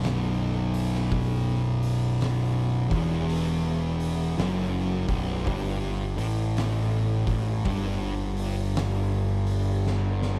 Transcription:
Already playing: B0 B1
0.03 snare, open hi-hat
0.74 open hi-hat
0.94 snare
1.12 kick, open hi-hat
1.83 open hi-hat
2.21 snare, open hi-hat
2.90 E1 E2, kick, open hi-hat
3.30 open hi-hat
4.00 open hi-hat
4.38 F#1 F#2, snare, open hi-hat
5.08 B0 B1, kick, open hi-hat
5.46 G1 G2, kick, open hi-hat
6.17 A1 A2, open hi-hat
6.57 snare, open hi-hat
7.27 A1 A2, kick, open hi-hat
7.65 G1 G2, kick, open hi-hat
8.37 open hi-hat
8.76 snare, open hi-hat
9.47 open hi-hat
9.87 snare
10.22 snare

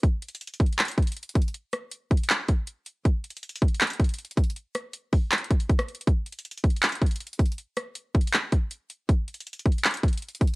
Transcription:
0.03 kick, closed hi-hat
0.22 closed hi-hat
0.29 closed hi-hat
0.35 closed hi-hat
0.41 closed hi-hat
0.47 closed hi-hat
0.54 closed hi-hat
0.60 kick, closed hi-hat
0.66 closed hi-hat
0.73 closed hi-hat
0.79 clap, closed hi-hat
0.85 closed hi-hat
0.88 closed hi-hat
0.91 closed hi-hat
0.98 kick, closed hi-hat
1.02 closed hi-hat
1.07 closed hi-hat
1.12 closed hi-hat
1.17 closed hi-hat
1.23 closed hi-hat
1.29 closed hi-hat
1.35 kick, closed hi-hat
1.42 closed hi-hat
1.48 closed hi-hat
1.54 closed hi-hat
1.73 cross-stick, closed hi-hat
1.91 closed hi-hat
2.11 kick, closed hi-hat
2.17 closed hi-hat
2.23 closed hi-hat
2.30 clap, closed hi-hat
2.48 kick, closed hi-hat
2.67 closed hi-hat
2.86 closed hi-hat
3.05 kick, closed hi-hat
3.24 closed hi-hat
3.30 closed hi-hat
3.37 closed hi-hat
3.43 closed hi-hat
3.49 closed hi-hat
3.56 closed hi-hat
3.62 kick, closed hi-hat
3.68 closed hi-hat
3.74 closed hi-hat
3.81 clap, closed hi-hat
3.87 closed hi-hat
3.90 closed hi-hat
3.93 closed hi-hat
4.00 kick, closed hi-hat
4.04 closed hi-hat
4.09 closed hi-hat
4.14 closed hi-hat
4.18 closed hi-hat
4.25 closed hi-hat
4.31 closed hi-hat
4.37 kick, closed hi-hat
4.44 closed hi-hat
4.50 closed hi-hat
4.56 closed hi-hat
4.75 cross-stick, closed hi-hat
4.93 closed hi-hat
5.13 kick, open hi-hat
5.32 clap, closed hi-hat
5.38 closed hi-hat
5.44 closed hi-hat
5.51 kick, closed hi-hat
5.60 closed hi-hat
5.69 kick, closed hi-hat
5.79 cross-stick, closed hi-hat
5.88 closed hi-hat
5.95 closed hi-hat
6.01 closed hi-hat
6.07 kick, closed hi-hat
6.26 closed hi-hat
6.32 closed hi-hat
6.39 closed hi-hat
6.45 closed hi-hat
6.51 closed hi-hat
6.57 closed hi-hat
6.64 kick, closed hi-hat
6.70 closed hi-hat
6.76 closed hi-hat
6.83 clap, closed hi-hat
6.89 closed hi-hat
6.92 closed hi-hat
6.95 closed hi-hat
7.01 kick, closed hi-hat
7.06 closed hi-hat
7.11 closed hi-hat
7.16 closed hi-hat
7.20 closed hi-hat
7.27 closed hi-hat
7.33 closed hi-hat
7.39 kick, closed hi-hat
7.46 closed hi-hat
7.52 closed hi-hat
7.58 closed hi-hat
7.77 cross-stick, closed hi-hat
7.95 closed hi-hat
8.15 kick, closed hi-hat
8.21 closed hi-hat
8.27 closed hi-hat
8.34 clap, closed hi-hat
8.52 kick, closed hi-hat
8.71 closed hi-hat
8.90 closed hi-hat
9.09 kick, closed hi-hat
9.28 closed hi-hat
9.34 closed hi-hat
9.40 closed hi-hat
9.47 closed hi-hat
9.53 closed hi-hat
9.59 closed hi-hat
9.66 kick, closed hi-hat
9.72 closed hi-hat
9.78 closed hi-hat
9.85 clap, closed hi-hat
9.91 closed hi-hat
9.94 closed hi-hat
9.97 closed hi-hat
10.03 kick, closed hi-hat
10.08 closed hi-hat
10.13 closed hi-hat
10.18 closed hi-hat
10.22 closed hi-hat
10.29 closed hi-hat
10.35 closed hi-hat
10.41 kick, closed hi-hat
10.47 closed hi-hat

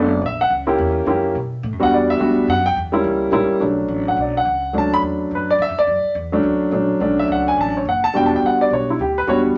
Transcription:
Already playing: F#1 D5
0.22 A#1
0.26 E5
0.41 F#5
0.50 C#2
0.67 A#3 C#4 E4 G4
0.78 E2
1.06 F#2 A#3 C#4 E4 G4
1.35 B2
1.63 A2
1.73 F#2
1.80 D2 G3 B3 D4 F#4 F#5
1.91 E2 D5
2.10 E5
2.19 D2 G3 B3 D4 F#4
2.48 F#2 F#5
2.66 G5
2.76 E2
2.92 G3 A#3 C#4 E4
3.04 C#2
3.32 A#1 G3 A#3 C#4 E4
3.49 muted upright bass stroke
3.60 B1 F#3 A3 C#4 D4
3.88 A1
4.08 F#5
4.17 B1
4.21 D5
4.37 F#5
4.45 C#2
4.73 D2 F#3 A3 C#4 D4
4.78 A5
4.94 B5
5.02 E2
5.31 F#2
5.35 B4
5.50 D5
5.59 G2 E5
5.69 F#2
5.77 D2 D5
5.87 F#2
6.04 muted upright bass stroke
6.15 E2
6.32 F#3 A3 C#4 D4
6.43 D2
6.72 A#1 F#3 A3 C#4 D4
7.00 B1 F#3 A3 C#4 D4
7.19 E5
7.28 C#2 F#5
7.48 G#5
7.57 A1 A5
7.77 C#5
7.85 F#1 F#5
8.04 A5
8.13 E1 G3 B3 D4 F#4 G5
8.26 A5
8.36 G5
8.42 G1 F#5
8.61 D5
8.70 B1 C#5
8.90 E4
8.99 D2 G4
9.18 B4
9.27 E2 G3 B3 D4 F#4 C#5

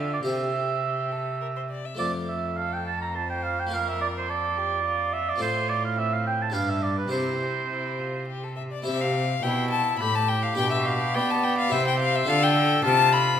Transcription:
Already playing: D3 D4 F4 A4 E5
0.13 D5
0.23 C3 G4 C5 E5
0.84 G4
1.12 A4
1.41 A#4
1.56 C5
1.70 D5
1.85 E5
1.95 A3 F4 C5 D5
1.99 F2
2.28 E5
2.57 A4 F5
2.73 G5
2.87 A5
3.02 A#5
3.14 C5 A5
3.30 G5
3.43 F5
3.60 G5
3.67 A#3 F4 A#4
3.73 A#4 F5
3.88 E5
4.01 D5
4.17 C5
4.28 A4 D5
4.57 G4
4.84 F4
5.13 E5
5.29 D5
5.36 C4 F4 A4
5.40 A2 C5
5.69 D5
5.85 F5
5.95 C4 E5
6.14 F5
6.27 G5
6.42 A5
6.50 D4 G4 B4 F5
6.54 G2
6.70 E5
6.83 D5
6.98 B4
7.08 C3 E4 G4 C5
7.12 C3
7.69 E4
7.99 F4
8.28 G4
8.43 A4
8.56 E5
8.72 D5
8.82 C3 E4 G4 C5 E5
8.87 C3
9.01 F5
9.42 B2 E4 G5
9.70 A5
9.99 A2 G4 B5
10.15 A5
10.28 G5
10.43 F5
10.53 D4 G4 D5 G5
10.58 B2
10.72 E5
10.85 F5
11.14 B3 D5 G5
11.30 A5
11.44 G5
11.58 F5
11.68 C3 E4 G4 C5 E5
11.72 C3 C5
11.87 G5
12.00 F5
12.15 E5
12.23 D4 F4 A4
12.27 D3 A4 F5
12.43 G5
12.84 C3 F4 A5
13.13 B5

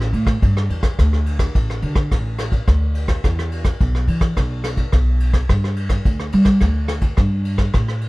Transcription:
Already playing: A1
0.01 cross-stick
0.13 A2, ride
0.27 kick, cross-stick, ride
0.42 G2, kick, ride
0.57 cross-stick
0.70 E2, ride
0.83 kick, cross-stick, ride
0.99 D2, kick, cross-stick, ride
1.13 cross-stick
1.26 ride
1.39 kick, cross-stick, ride
1.55 A1, kick, ride
1.70 cross-stick
1.82 D3, ride
1.96 kick, cross-stick, ride
2.11 A1, kick, cross-stick, ride
2.39 cross-stick, ride
2.52 kick, ride
2.68 D2, kick, cross-stick, ride
2.95 ride
3.08 kick, cross-stick, ride
3.24 E2, kick, cross-stick, ride
3.39 cross-stick
3.52 ride
3.65 kick, cross-stick, ride
3.80 B1, kick, ride
3.95 cross-stick
4.08 E3, ride
4.21 kick, cross-stick, ride
4.36 B1, kick, cross-stick, ride
4.64 cross-stick, ride
4.77 kick, ride
4.92 B1, kick, cross-stick, ride
5.20 ride
5.33 kick, cross-stick, ride
5.49 G2, kick, cross-stick, ride
5.64 cross-stick
5.76 ride
5.89 kick, cross-stick, ride
6.05 D2, kick, ride
6.20 cross-stick
6.32 G3, ride
6.45 kick, cross-stick, ride
6.61 D2, kick, cross-stick, ride
6.88 cross-stick, ride
7.01 kick, ride
7.17 G2, kick, cross-stick, ride
7.45 ride
7.58 kick, cross-stick, ride
7.74 A2, kick, cross-stick, ride
7.88 cross-stick
8.01 ride

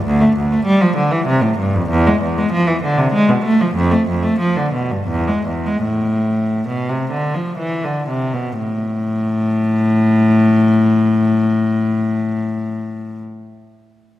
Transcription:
0.04 D2
0.21 A3
0.37 D2
0.52 A3
0.65 G3
0.82 F3
0.96 D3
1.11 E3
1.27 C3
1.41 A2
1.58 G2
1.74 F2
1.89 E2
2.07 G#3
2.22 E2
2.38 G#3
2.52 F3
2.67 E3
2.83 D3
2.98 C3
3.13 G#3
3.29 B2
3.44 A3
3.61 F3
3.75 F2
3.92 A3
4.09 F2
4.23 A3
4.39 F3
4.57 D3
4.73 B2
4.91 G2
5.09 E2
5.27 G#3
5.47 E2
5.66 G#3
5.83 A2
6.68 B2
6.90 C3
7.12 D3
7.34 F3
7.58 E3
7.84 D3
8.08 C3
8.34 B2
8.57 A2

